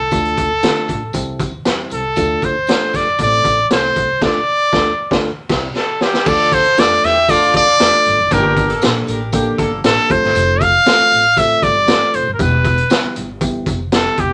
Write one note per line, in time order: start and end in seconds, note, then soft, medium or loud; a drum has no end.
0.00 0.12 C2 medium
0.00 1.41 A4 medium
0.11 0.32 D2 loud
0.11 0.49 A3 medium
0.11 0.49 D4 medium
0.11 0.49 F4 medium
0.11 0.49 A4 medium
0.11 kick loud
0.11 closed hi-hat medium
0.11 tambourine medium
0.25 closed hi-hat soft
0.37 0.58 D2 medium
0.37 kick medium
0.37 closed hi-hat medium
0.37 tambourine medium
0.63 0.83 D3 medium
0.63 1.01 A3 medium
0.63 1.01 D4 medium
0.63 1.01 F4 medium
0.63 1.01 A4 medium
0.63 snare loud
0.63 closed hi-hat medium
0.63 tambourine loud
0.88 1.09 A1 medium
0.88 kick medium
0.88 closed hi-hat medium
0.88 tambourine medium
1.13 1.35 C2 loud
1.13 1.52 G3 medium
1.13 1.52 C4 medium
1.13 1.52 E4 medium
1.13 1.52 G4 medium
1.13 kick medium
1.13 closed hi-hat medium
1.13 tambourine medium
1.39 1.60 D2 medium
1.39 kick medium
1.39 closed hi-hat medium
1.39 tambourine medium
1.65 1.86 E2 medium
1.65 2.03 G3 medium
1.65 2.03 C4 medium
1.65 2.03 E4 medium
1.65 2.03 G4 medium
1.65 snare loud
1.65 closed hi-hat medium
1.65 tambourine medium
1.90 2.12 C2 medium
1.90 2.46 A4 medium
1.90 closed hi-hat medium
1.90 tambourine soft
2.16 2.37 D2 loud
2.16 2.54 A3 medium
2.16 2.54 D4 medium
2.16 2.55 F4 medium
2.16 2.55 A4 medium
2.16 kick medium
2.16 closed hi-hat medium
2.16 tambourine medium
2.42 2.63 D2 medium
2.42 2.98 C5 loud
2.42 kick medium
2.42 closed hi-hat medium
2.42 tambourine medium
2.67 3.06 A3 medium
2.67 3.06 D4 medium
2.67 3.06 F4 medium
2.67 3.06 A4 medium
2.67 snare loud
2.67 closed hi-hat medium
2.67 tambourine loud
2.81 muted upright bass stroke soft
2.93 3.14 F2 medium
2.93 3.20 D5 loud
2.93 kick medium
2.93 snare soft
2.93 closed hi-hat medium
2.93 tambourine medium
3.18 3.39 A1 loud
3.18 3.57 A3 medium
3.18 3.26 A#3 soft
3.18 3.57 E4 medium
3.18 3.57 A4 medium
3.18 3.68 D5 loud
3.18 kick medium
3.18 closed hi-hat medium
3.18 tambourine medium
3.26 3.60 C4 medium
3.44 3.65 A1 medium
3.44 kick medium
3.44 closed hi-hat medium
3.44 tambourine medium
3.70 3.91 C2 medium
3.70 4.08 A3 medium
3.70 4.08 C4 medium
3.70 4.08 E4 medium
3.70 4.08 A4 medium
3.70 4.20 C5 loud
3.70 snare loud
3.70 closed hi-hat medium
3.70 tambourine medium
3.95 4.21 C2 medium
3.95 kick medium
3.95 closed hi-hat medium
3.95 tambourine soft
4.22 4.39 D2 loud
4.22 4.39 A3 medium
4.22 4.39 D4 loud
4.22 4.39 F4 loud
4.22 4.39 A4 medium
4.22 5.22 D5 medium
4.22 kick loud
4.22 snare medium
4.22 crash medium
4.73 4.90 D2 medium
4.73 4.91 A3 medium
4.73 4.90 D4 loud
4.73 4.91 F4 medium
4.73 4.90 A4 medium
4.73 kick loud
4.73 snare loud
5.11 5.29 D2 medium
5.11 5.29 A3 loud
5.11 5.29 D4 loud
5.11 5.29 F4 medium
5.11 5.29 A4 loud
5.11 kick loud
5.11 snare loud
5.49 5.67 C2 medium
5.49 5.67 G3 medium
5.49 5.67 C4 medium
5.49 5.67 E4 medium
5.49 5.67 G4 medium
5.49 kick loud
5.49 snare medium
5.49 crash medium
5.75 6.05 A4 medium
5.75 snare medium
6.01 6.30 G4 medium
6.01 snare medium
6.14 snare medium
6.25 6.67 D2 loud
6.25 6.64 A3 medium
6.25 6.74 D4 medium
6.25 6.64 D4 medium
6.25 6.74 F4 loud
6.25 6.64 F4 medium
6.25 6.74 A4 loud
6.25 6.64 A4 medium
6.25 6.55 D5 loud
6.25 kick loud
6.25 crash medium
6.25 tambourine medium
6.52 6.81 C5 loud
6.52 kick medium
6.52 closed hi-hat medium
6.52 tambourine medium
6.64 closed hi-hat medium
6.77 6.98 F2 medium
6.77 6.98 A3 medium
6.77 7.15 A3 medium
6.77 7.15 D4 medium
6.77 6.98 D4 medium
6.77 6.98 F4 medium
6.77 7.15 F4 medium
6.77 7.15 A4 medium
6.77 7.06 D5 loud
6.77 snare loud
6.77 closed hi-hat medium
6.77 tambourine loud
7.03 7.54 E2 medium
7.03 7.24 C4 medium
7.03 7.24 E4 medium
7.03 7.24 G4 loud
7.03 7.32 E5 loud
7.03 snare soft
7.03 closed hi-hat medium
7.03 tambourine medium
7.28 7.66 A3 medium
7.28 7.77 A3 loud
7.28 7.66 D4 medium
7.28 7.77 D4 loud
7.28 7.66 F4 medium
7.28 7.77 F4 loud
7.28 7.66 A4 medium
7.28 7.55 D5 loud
7.28 kick loud
7.28 closed hi-hat medium
7.28 tambourine loud
7.42 closed hi-hat medium
7.54 7.75 D2 loud
7.54 8.35 D5 loud
7.54 kick loud
7.54 closed hi-hat medium
7.54 tambourine medium
7.80 7.90 E2 medium
7.80 8.17 A3 medium
7.80 8.17 D4 medium
7.80 8.18 F4 medium
7.80 8.18 A4 medium
7.80 snare loud
7.80 closed hi-hat loud
7.80 tambourine medium
8.04 8.16 G1 loud
8.04 closed hi-hat medium
8.04 tambourine medium
8.19 8.29 F1 medium
8.31 8.72 G1 loud
8.31 8.68 A#3 medium
8.31 8.67 A#3 medium
8.31 8.67 D4 loud
8.31 8.69 D4 medium
8.31 8.67 G4 loud
8.31 8.69 G4 medium
8.31 8.83 A#4 medium
8.31 8.69 A5 medium
8.31 kick loud
8.31 closed hi-hat medium
8.31 tambourine medium
8.57 kick medium
8.57 closed hi-hat medium
8.57 tambourine medium
8.70 9.06 A#3 medium
8.70 9.05 D4 medium
8.70 9.06 A4 loud
8.70 closed hi-hat soft
8.82 9.03 A#1 medium
8.82 9.20 A#3 medium
8.82 9.20 D4 medium
8.82 9.20 G4 medium
8.82 9.20 A4 medium
8.82 snare loud
8.82 closed hi-hat medium
8.82 tambourine loud
9.07 9.48 A1 medium
9.07 9.29 D4 medium
9.07 9.28 G4 medium
9.07 9.28 A#4 medium
9.07 closed hi-hat medium
9.07 tambourine medium
9.32 9.70 A#3 medium
9.32 9.54 A#3 loud
9.32 9.71 D4 medium
9.32 9.54 D4 medium
9.32 9.71 G4 medium
9.32 9.54 G4 loud
9.32 9.71 A4 medium
9.32 kick loud
9.32 closed hi-hat loud
9.32 tambourine medium
9.58 9.79 G1 loud
9.58 9.79 A#3 medium
9.58 9.79 D4 medium
9.58 9.79 A4 loud
9.58 kick medium
9.58 closed hi-hat medium
9.58 tambourine medium
9.84 9.94 A1 loud
9.84 10.10 A#3 medium
9.84 10.10 D4 medium
9.84 10.10 G4 medium
9.84 10.09 A4 medium
9.84 10.13 A4 loud
9.84 snare loud
9.84 closed hi-hat loud
9.84 tambourine loud
10.09 10.20 F1 loud
10.09 10.71 A3 medium
10.09 10.71 C4 medium
10.09 10.71 F4 medium
10.09 10.71 A4 medium
10.09 10.63 C5 loud
10.09 kick loud
10.09 closed hi-hat medium
10.09 tambourine medium
10.23 10.33 G1 loud
10.23 snare soft
10.35 10.75 F1 loud
10.35 closed hi-hat medium
10.35 tambourine loud
10.61 11.40 F5 loud
10.61 kick medium
10.61 closed hi-hat medium
10.61 tambourine medium
10.86 11.24 A3 medium
10.86 11.24 C4 medium
10.86 11.24 F4 medium
10.86 11.24 A4 medium
10.86 snare loud
10.86 closed hi-hat medium
10.86 tambourine loud
10.99 muted upright bass stroke soft
11.12 11.52 A1 medium
11.12 closed hi-hat medium
11.12 tambourine medium
11.37 11.75 A3 medium
11.37 11.75 C4 medium
11.37 11.75 F4 medium
11.37 11.75 A4 medium
11.37 11.65 E5 loud
11.37 kick loud
11.37 closed hi-hat loud
11.37 tambourine medium
11.62 11.93 G1 loud
11.62 12.17 D5 loud
11.62 kick medium
11.62 closed hi-hat medium
11.62 tambourine medium
11.88 12.26 A3 medium
11.88 12.26 C4 medium
11.88 12.26 F4 medium
11.88 12.26 A4 medium
11.88 snare loud
11.88 closed hi-hat medium
11.88 tambourine loud
12.13 12.24 F1 medium
12.13 12.33 C5 medium
12.13 closed hi-hat medium
12.13 tambourine medium
12.27 12.37 G1 medium
12.34 12.43 A#4 medium
12.39 12.80 E1 loud
12.39 12.77 G3 medium
12.39 12.77 B3 medium
12.39 12.77 E4 medium
12.39 12.77 G4 medium
12.39 13.17 B4 medium
12.39 kick loud
12.39 closed hi-hat medium
12.39 tambourine loud
12.65 kick medium
12.65 closed hi-hat medium
12.65 tambourine medium
12.78 closed hi-hat medium
12.90 13.28 G3 medium
12.90 13.28 B3 medium
12.90 13.28 E4 medium
12.90 13.28 G4 medium
12.90 snare loud
12.90 closed hi-hat medium
12.90 tambourine loud
13.03 muted upright bass stroke soft
13.16 13.56 G1 medium
13.16 closed hi-hat medium
13.16 tambourine medium
13.41 13.79 G3 medium
13.41 13.79 B3 medium
13.41 13.79 E4 medium
13.41 13.79 G4 medium
13.41 kick loud
13.41 closed hi-hat medium
13.41 tambourine medium
13.66 14.07 F1 medium
13.66 kick loud
13.66 closed hi-hat medium
13.66 tambourine medium
13.92 14.30 G3 medium
13.92 14.30 B3 medium
13.92 14.30 E4 medium
13.92 14.30 G4 medium
13.92 14.22 A4 medium
13.92 snare loud
13.92 closed hi-hat medium
13.92 tambourine loud
14.17 14.33 E1 medium
14.17 14.33 G4 medium
14.17 kick medium
14.17 closed hi-hat medium
14.17 tambourine medium